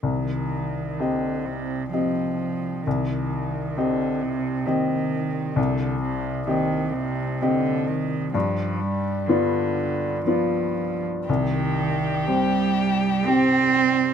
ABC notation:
X:1
M:3/4
L:1/8
Q:1/4=64
K:Cm
V:1 name="Grand piano"
C,,2 [CGe]2 [CGe]2 | C,,2 [CGe]2 [CGe]2 | C,,2 [CGe]2 [CGe]2 | G,,2 [=B,Fd]2 [B,Fd]2 |
C,,2 [CGc]2 [CGc]2 |]
V:2 name="Violin"
z6 | z6 | z6 | z6 |
G6 |]
V:3 name="Cello" clef=bass
E,2 D, C, F,2 | E,2 D, C, E,2 | D, C, E, C, D, E, | F, G, D,2 F,2 |
E,2 G,2 C2 |]